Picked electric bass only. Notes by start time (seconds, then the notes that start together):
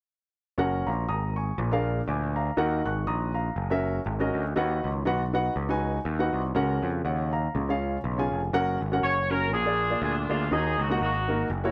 0.58 F#1
0.87 A#1
1.09 G#1
1.58 A#1
2.08 D2
2.57 D#2
2.85 G#1
3.07 A#1
3.56 F#1
4.06 G#1
4.34 D2
4.56 D#2
4.84 C#2
5.06 B1
5.56 C#2
6.05 D#2
6.33 C2
6.55 C#2
6.83 F2
7.05 D#2
7.55 C#2
8.04 B1
8.32 F1
8.53 F#1
8.81 G#1
9.03 F#1
9.52 A#1
10.02 D2
10.30 D2
10.51 D#2
10.78 C#2
11.01 G#1
11.50 F#1